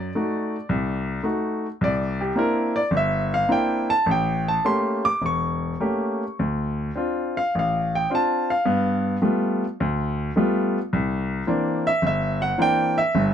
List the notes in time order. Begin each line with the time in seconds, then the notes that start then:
Already playing: D5
0.15 A3 D#4 F#4
0.69 C2
1.24 A3 D#4 F#4
1.81 C2 D5
2.21 G4
2.35 A#3 C4 D4 E4 A#4
2.76 D5
2.91 G1
2.97 E5
3.34 F5
3.49 A#3 C4 D4 E4 G5
3.90 A5
4.06 A1
4.11 G5
4.48 A5
4.65 A3 A#3 C#4 G4 C6
5.05 D6
5.22 E1
5.26 C#6
5.80 A3 A#3 C#4 G4
6.39 D2
6.95 C4 D4 F4
7.37 F5
7.55 A1
7.59 F5
7.95 G5
8.10 C4 D4 F4
8.15 A5
8.50 F5
8.65 G2 B3
9.22 G3 A3 B3 F4
9.80 D2
10.36 G3 A3 B3 F4
10.93 C2
11.47 E3 A#3 C4 D4
11.87 E5
12.02 G1
12.07 E5
12.42 F#5
12.58 E3 A#3 C4 D4 G5
12.98 E5
13.15 G1 G2